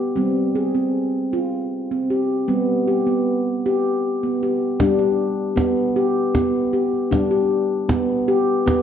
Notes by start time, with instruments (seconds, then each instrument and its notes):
Already playing: handpan G3 G4
0.16 handpan G3 C4
0.55 handpan G#4
0.75 handpan C4
1.33 handpan F4
1.91 handpan C4
2.10 handpan G4
2.48 handpan G3 B3
2.88 handpan G4
3.07 handpan B3
3.66 handpan G4
4.23 handpan B3
4.43 handpan G4
4.80 handpan G3 D4, cajon bass, cajon slap
4.99 handpan G4
5.56 handpan B3, cajon bass, cajon slap
5.96 handpan G4
6.35 handpan B3, cajon bass, cajon slap
6.73 handpan G4
6.93 cajon slap
7.11 handpan G3 D4, cajon bass, cajon slap
7.31 handpan G4
7.89 handpan B3, cajon bass, cajon slap
8.28 handpan G4
8.66 handpan B3, cajon bass, cajon slap